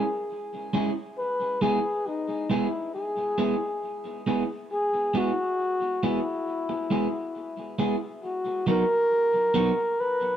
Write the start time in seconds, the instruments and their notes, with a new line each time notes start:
Already playing: flugelhorn G#4
0.73 clean electric guitar G#3 C#4 E4 G#4
1.18 flugelhorn B4
1.61 clean electric guitar G#3 B3 E4 G#4, flugelhorn G#4
2.07 flugelhorn D#4
2.50 clean electric guitar G#3 B3 E4 G#4, flugelhorn E4
2.95 flugelhorn G#4
3.38 clean electric guitar G#3 B3 E4 G#4
4.27 clean electric guitar G#3 B3 E4 G#4
4.73 flugelhorn G#4
5.14 clean electric guitar G#3 B3 E4 G#4, flugelhorn F#4
6.03 clean electric guitar G#3 B3 E4 G#4, flugelhorn E4
6.69 muted clean electric guitar stroke
6.91 clean electric guitar G#3 B3 E4 G#4
7.79 clean electric guitar G#3 B3 E4 G#4
8.24 flugelhorn F#4
8.67 clean electric guitar F#3 B3 D#4 F#4, flugelhorn A#4
9.54 clean electric guitar F#3 B3 D#4 F#4
10.00 flugelhorn B4